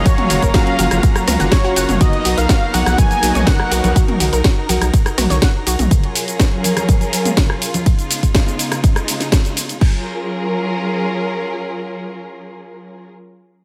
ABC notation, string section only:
X:1
M:4/4
L:1/8
Q:1/4=123
K:F#
V:1 name="String section"
[F,CGea]8 | [DA]8- | [DA]8 | [F,CEGA]8 |
[C,G,B,D]8 | [F,CEGA]8- | [F,CEGA]8 |]